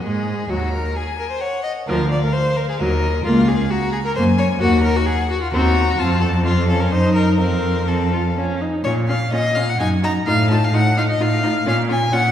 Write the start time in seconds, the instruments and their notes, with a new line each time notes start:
Already playing: violin D#5
0.02 cello G#2, viola G#3, violin G#4
0.49 cello D#2, viola F#3, violin F#4 A#5
0.73 violin A#4
0.96 violin G#4 G#5
1.19 violin A#4
1.30 violin C5
1.40 violin C#5 F#5
1.63 violin D#5
1.87 cello D2, viola F3, violin A#4 F5
2.11 violin D5
2.24 violin A#4
2.33 violin C5
2.57 violin A#4
2.69 violin G#4
2.79 cello D#2, viola F#3, violin A#4 D#5
3.24 cello C#2, viola A#3, violin F4 F5
3.48 violin G#4
3.70 violin F#4 A#5
3.92 violin G#4
4.05 violin A#4
4.16 cello F#2, viola A#3, violin C5 G#5
4.38 violin C#5
4.60 cello D#2, viola A#3, violin F#4 F#5
4.83 violin A#4
4.96 violin F#4
5.06 violin G#4
5.30 violin F#4
5.42 violin F4
5.53 cello D#2, viola C4, violin F#4 A#5
5.98 cello F2, viola C4, violin F4 A5
6.21 violin A4
6.44 viola C4, violin F4 F5
6.68 viola C#4, violin A4
6.80 violin A#4
6.91 cello F#2, viola D#4, violin C5 D#5
7.14 violin A#4
7.38 cello F2, viola C4, violin A#4 F5
7.88 viola C4, violin A4
8.12 viola F4
8.36 viola C#4
8.61 viola D#4
8.84 cello A#2, viola C#4, violin F4 C#5
9.08 viola C#4, violin F4 F5
9.32 cello A#2, viola C#4, violin F4 D#5
9.55 viola C#4, violin F4 F5
9.69 violin F#5
9.79 cello F#2, viola D#4, violin F#4 G#5
10.03 viola D#4, violin F#4 A#5
10.27 cello A2, viola D#4, violin F4 F5
10.50 viola D#4, violin F4 A5
10.64 violin F5
10.73 cello A2, viola D#4, violin F4 F#5
10.97 viola D#4, violin F4 F5
11.10 violin D#5
11.20 cello A2, viola D#4, violin F4 F5
11.43 viola D#4, violin F4
11.66 cello A#2, viola C#4, violin F4 F5
11.89 viola C#4, violin F4 G#5
12.12 cello A#2, viola C#4, violin F4 F#5